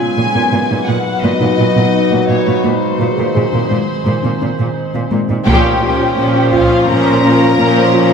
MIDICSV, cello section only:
0, 0, Header, 1, 2, 480
1, 0, Start_track
1, 0, Tempo, 705882
1, 1801, Time_signature, 4, 2, 24, 8
1, 5530, End_track
2, 0, Start_track
2, 0, Title_t, "Cello section"
2, 0, Program_c, 0, 48
2, 122, Note_on_c, 0, 46, 38
2, 170, Note_off_c, 0, 46, 0
2, 242, Note_on_c, 0, 46, 48
2, 290, Note_off_c, 0, 46, 0
2, 359, Note_on_c, 0, 46, 36
2, 408, Note_off_c, 0, 46, 0
2, 483, Note_on_c, 0, 46, 33
2, 531, Note_off_c, 0, 46, 0
2, 600, Note_on_c, 0, 46, 44
2, 648, Note_off_c, 0, 46, 0
2, 841, Note_on_c, 0, 46, 52
2, 889, Note_off_c, 0, 46, 0
2, 961, Note_on_c, 0, 46, 31
2, 1009, Note_off_c, 0, 46, 0
2, 1080, Note_on_c, 0, 46, 34
2, 1128, Note_off_c, 0, 46, 0
2, 1199, Note_on_c, 0, 46, 46
2, 1247, Note_off_c, 0, 46, 0
2, 1437, Note_on_c, 0, 46, 33
2, 1486, Note_off_c, 0, 46, 0
2, 1559, Note_on_c, 0, 46, 45
2, 1607, Note_off_c, 0, 46, 0
2, 1681, Note_on_c, 0, 46, 30
2, 1729, Note_off_c, 0, 46, 0
2, 1803, Note_on_c, 0, 46, 47
2, 1850, Note_off_c, 0, 46, 0
2, 2039, Note_on_c, 0, 46, 35
2, 2088, Note_off_c, 0, 46, 0
2, 2163, Note_on_c, 0, 46, 44
2, 2211, Note_off_c, 0, 46, 0
2, 2284, Note_on_c, 0, 46, 34
2, 2331, Note_off_c, 0, 46, 0
2, 2403, Note_on_c, 0, 46, 29
2, 2451, Note_off_c, 0, 46, 0
2, 2520, Note_on_c, 0, 46, 41
2, 2568, Note_off_c, 0, 46, 0
2, 2761, Note_on_c, 0, 46, 44
2, 2809, Note_off_c, 0, 46, 0
2, 2883, Note_on_c, 0, 46, 29
2, 2930, Note_off_c, 0, 46, 0
2, 3002, Note_on_c, 0, 46, 32
2, 3050, Note_off_c, 0, 46, 0
2, 3120, Note_on_c, 0, 46, 39
2, 3168, Note_off_c, 0, 46, 0
2, 3359, Note_on_c, 0, 46, 33
2, 3407, Note_off_c, 0, 46, 0
2, 3479, Note_on_c, 0, 46, 35
2, 3527, Note_off_c, 0, 46, 0
2, 3599, Note_on_c, 0, 46, 31
2, 3648, Note_off_c, 0, 46, 0
2, 3718, Note_on_c, 0, 46, 69
2, 4124, Note_off_c, 0, 46, 0
2, 4200, Note_on_c, 0, 46, 42
2, 4624, Note_off_c, 0, 46, 0
2, 4683, Note_on_c, 0, 46, 46
2, 5105, Note_off_c, 0, 46, 0
2, 5159, Note_on_c, 0, 46, 40
2, 5530, Note_off_c, 0, 46, 0
2, 5530, End_track
0, 0, End_of_file